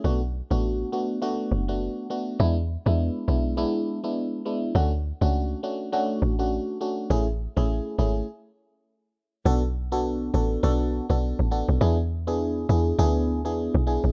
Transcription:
X:1
M:4/4
L:1/16
Q:"Swing 16ths" 1/4=102
K:Bdor
V:1 name="FM electric piano"
[A,B,DF] z2 [A,B,DF]3 [A,B,DF]2 [A,B,DF]3 [A,B,DF]3 [A,B,DF]2 | [G,B,DE] z2 [G,B,DE]3 [G,B,DE]2 [G,B,DE]3 [G,B,DE]3 [G,B,DE]2 | [A,CDF] z2 [A,CDF]3 [A,CDF]2 [A,CDF]3 [A,CDF]3 [A,CDF]2 | [A,CEG] z2 [A,CEG]3 [A,CEG]2 z8 |
[B,DFA] z2 [B,DFA]3 [B,DFA]2 [B,DFA]3 [B,DFA]3 [B,DFA]2 | [B,DEG] z2 [B,DEG]3 [B,DEG]2 [B,DEG]3 [B,DEG]3 [B,DEG]2 |]
V:2 name="Log drum bass" clef=bass
B,,,3 A,,,3 z4 F,,,3 z3 | E,,3 E,,2 z B,,,3 z6 z | D,,3 C,,3 z4 A,,,3 z3 | A,,,3 A,,,2 z G,,,2 z8 |
B,,,6 A,,,2 B,,,3 B,,,2 A,,,2 B,,, | E,,6 E,,2 D,,3 E,,2 B,,,2 A,,, |]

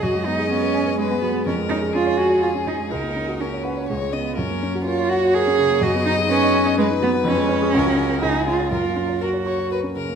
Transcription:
X:1
M:3/4
L:1/16
Q:1/4=124
K:F#
V:1 name="Violin"
d8 B4 | A4 G8 | A4 A2 B2 c2 d2 | A4 c8 |
d8 B4- | B4 A4 G4 | A4 A2 c2 B2 A2 |]
V:2 name="Cello"
F2 D2 C4 G,2 B,2 | C2 D2 E2 F2 E2 D2 | D4 C4 G,2 B,2 | C4 E2 F2 G4 |
F2 D2 C4 G,2 B,2 | C8 D2 E2 | E4 F4 z4 |]
V:3 name="Grand piano"
F,, G, B, G B, B g B G B, F, G, | E,, G, C G C c g c G C E, G, | C,, A, C F A c f c C,, G, C E | F,, A, C F A c f c A C C, A, |
F,, B, D G B d g d B D F, B, | E,, G, C G C,, F, C A C,, G, C c | F,, A, C c A c c' c A C C, A, |]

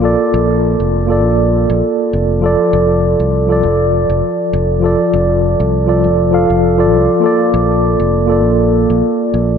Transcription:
X:1
M:4/4
L:1/16
Q:"Swing 16ths" 1/4=100
K:F
V:1 name="Tine electric piano"
[B,FAd]6- [B,FAd] [B,FAd]8- [B,FAd] | [F,FAd]6- [F,FAd] [F,FAd]8- [F,FAd] | [F,FAd]6- [F,FAd] [F,FAd]3 [F,FAf]3 [F,FAd]3 | [B,FAd]6- [B,FAd] [B,FAd]8- [B,FAd] |]
V:2 name="Fretless electric bass" clef=bass
B,,, z B,,,3 F,,,3 B,,,3 B,,, z2 F,,,2- | F,,, z F,,,3 C,,3 F,,,3 F,,, z2 F,,,2- | F,,, z F,,,3 C,,3 F,,,3 F,,,3 C,, z | z2 B,,,3 F,,,3 B,,,3 B,,, z2 B,,,2 |]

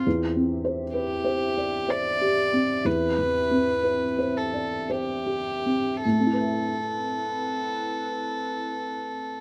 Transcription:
X:1
M:3/4
L:1/8
Q:1/4=58
K:Am
V:1 name="Violin"
z2 G2 d2 | B3 A G2 | A6 |]
V:2 name="Felt piano"
(3E,, C c (3B c d (3c G C | (3E,, E, C (3B c d (3c G C | [A,,A,CEBe]6 |]
V:3 name="Ambient pad"
[CGe]6- | [CGe]6 | [CEB]6 |]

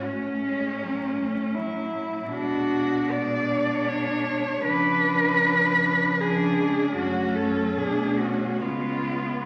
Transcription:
X:1
M:3/4
L:1/8
Q:1/4=77
K:F#m
V:1 name="Cello"
C4- C z | F2 d2 c2 | B4 G2 | F A G F ^E2 |]
V:2 name="Cello"
C4 E2 | D2 D4 | D4 D2 | C2 D C B,2 |]
V:3 name="Cello" clef=bass
A, G, F, A, F,2 | G,2 G,4 | ^E,4 E, G, | A,2 A,2 G,2 |]
V:4 name="Cello" clef=bass
A,,6 | B,,6 | C,6 | F,,2 B,,2 C,2 |]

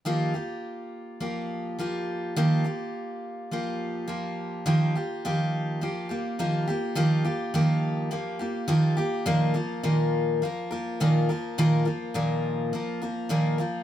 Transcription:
X:1
M:4/4
L:1/8
Q:1/4=104
K:Eb
V:1 name="Steel-string acoustic guitar"
[E,F,B,FG] [B,FG]3 [F,B,FG]2 [F,B,FG]2 | [E,F,B,FG] [B,FG]3 [F,B,FG]2 [F,B,FG]2 | [E,F,B,FG] [B,FG] [E,F,B,FG]2 [F,B,FG] [B,FG] [E,F,B,FG] [B,FG] | [E,F,B,FG] [B,FG] [E,F,B,FG]2 [F,B,FG] [B,FG] [E,F,B,FG] [B,FG] |
[B,,E,F,B,FB] [F,B,FB] [B,,E,F,B,FB]2 [F,B,FB] [F,B,FB] [B,,E,F,B,FB] [F,B,FB] | [B,,E,F,B,FB] [F,B,FB] [B,,E,F,B,FB]2 [F,B,FB] [F,B,FB] [B,,E,F,B,FB] [F,B,FB] |]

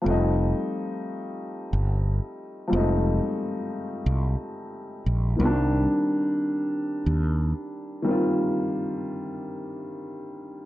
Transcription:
X:1
M:4/4
L:1/16
Q:"Swing 16ths" 1/4=90
K:Fmix
V:1 name="Upright piano"
[F,G,A,CE]16 | [F,G,_A,=A,CE]16 | [E,G,B,CD]16 | [E,G,B,CF]16 |]
V:2 name="Fretless electric bass" clef=bass
F,,,3 z6 z G,,,3 z3 | F,,,3 z4 z C,,2 z4 B,,,2 | C,,3 z6 z E,,3 z3 | z16 |]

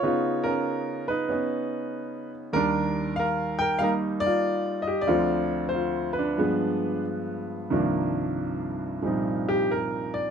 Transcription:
X:1
M:4/4
L:1/8
Q:"Swing" 1/4=93
K:Cm
V:1 name="Grand piano"
_d [_DB]2 [E_c]4 z | [DB]2 [Bf] [Bg] [Bf] [Fd]2 [Ge] | [Fd]2 [Fc] [D=B]3 z2 | z4 z G B d |]
V:2 name="Grand piano" clef=bass
[_D,_CEF]4 [C_DE]4 | [E,,E,G,]4 [G,B,E]4 | [D,,D,F,C]4 [G,,F,A,=B,]4 | [C,,G,,E,F,B,D]4 [B,,F,G,CE]4 |]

